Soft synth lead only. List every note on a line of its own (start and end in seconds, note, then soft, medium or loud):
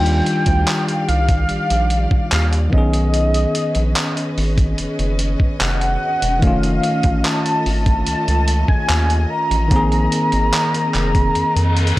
0.00 1.08 G5 loud
1.08 2.28 F5 loud
2.32 2.46 F5 medium
2.73 4.33 D#5 medium
5.61 6.44 F#5 medium
6.42 7.26 F5 medium
7.25 8.06 A5 loud
8.07 8.65 A5 loud
8.68 9.31 G#5 loud
9.30 11.99 A#5 loud